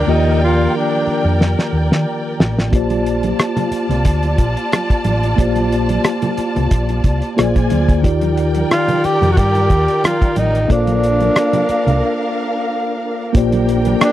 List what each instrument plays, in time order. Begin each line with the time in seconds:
Already playing: tenor saxophone D4, string section A#4 D5 G5
0.06 fingered electric bass D#2, tine electric piano D#3 A#3 F4 G4
0.10 tenor saxophone D#4, tine electric piano D5
0.43 tenor saxophone F4
0.77 tenor saxophone D4
1.07 muted fingered electric bass stroke
1.25 fingered electric bass F2
1.41 snare
1.59 snare
1.73 fingered electric bass D#2
1.91 fingered electric bass D#3, snare
2.40 fingered electric bass A1, snare
2.59 snare
2.71 fingered electric bass A#1, tine electric piano A#3 F4 G4 C5, string section F4 D5 A5, kick, closed hi-hat, muted conga
2.76 tine electric piano D5
2.90 closed hi-hat, high conga
3.06 closed hi-hat
3.23 closed hi-hat, high conga
3.39 cross-stick, closed hi-hat, muted conga
3.57 closed hi-hat, high conga, low conga
3.71 muted fingered electric bass stroke, closed hi-hat
3.89 fingered electric bass C2, closed hi-hat, low conga
4.05 fingered electric bass D2, kick, closed hi-hat, muted conga
4.23 closed hi-hat, muted conga
4.38 fingered electric bass A#1, kick, closed hi-hat
4.57 closed hi-hat
4.72 cross-stick, closed hi-hat, high conga
4.90 kick, closed hi-hat
5.04 fingered electric bass A1, closed hi-hat, high conga
5.23 closed hi-hat
5.36 fingered electric bass A#1, tine electric piano A#3 F4 G4 C5, kick, closed hi-hat, muted conga
5.41 tine electric piano D5
5.56 closed hi-hat, high conga
5.72 closed hi-hat
5.89 closed hi-hat, high conga
6.04 cross-stick, closed hi-hat, muted conga
6.22 closed hi-hat, muted conga, high conga, low conga
6.38 muted fingered electric bass stroke, closed hi-hat
6.56 fingered electric bass C2, closed hi-hat, low conga
6.71 fingered electric bass A#1, kick, closed hi-hat
6.89 closed hi-hat, muted conga
7.04 fingered electric bass C2, kick, closed hi-hat
7.22 closed hi-hat
7.36 fingered electric bass A#1, tine electric piano A#3 F4 G#4 C5 D5, string section F4 D5 G#5, cross-stick, closed hi-hat, muted conga, high conga
7.56 kick, closed hi-hat, muted conga
7.70 fingered electric bass D2, closed hi-hat, high conga
7.89 kick, closed hi-hat
8.02 fingered electric bass D#2, tine electric piano D#3 D#4 F4 G4 D5, string section A#4 D5 G5, kick, closed hi-hat
8.21 closed hi-hat, muted conga, high conga
8.37 closed hi-hat
8.55 closed hi-hat, high conga
8.71 tenor saxophone F4, cross-stick, closed hi-hat, muted conga
8.88 closed hi-hat, high conga, low conga
9.04 tenor saxophone G4, muted fingered electric bass stroke, closed hi-hat
9.22 fingered electric bass F2, closed hi-hat, low conga
9.32 tenor saxophone F#4
9.37 fingered electric bass G2, tenor saxophone G4, kick, cross-stick, closed hi-hat
9.55 closed hi-hat, muted conga
9.70 fingered electric bass D#2, kick, closed hi-hat
9.88 closed hi-hat
10.04 tenor saxophone F4, cross-stick, closed hi-hat, muted conga, high conga
10.21 kick, closed hi-hat, muted conga
10.36 fingered electric bass A1, tenor saxophone D#4, closed hi-hat, high conga
10.55 closed hi-hat
10.68 fingered electric bass A#1, tine electric piano A#3 F4 A4 C5, string section D4 A#4 F5, tenor saxophone D4, kick, closed hi-hat
10.72 tine electric piano D5
10.87 closed hi-hat, muted conga, high conga
11.04 closed hi-hat
11.20 closed hi-hat, high conga
11.36 cross-stick, closed hi-hat
11.53 closed hi-hat, muted conga, high conga, low conga
11.69 muted fingered electric bass stroke, closed hi-hat
11.87 fingered electric bass C2, closed hi-hat, low conga
13.33 fingered electric bass A#1, tine electric piano A#3 F4 G4 C5, string section D4 A#4 G5, kick, closed hi-hat
13.37 tine electric piano D5
13.52 closed hi-hat, muted conga, high conga
13.69 closed hi-hat
13.85 closed hi-hat, high conga
14.01 tenor saxophone D4, cross-stick, closed hi-hat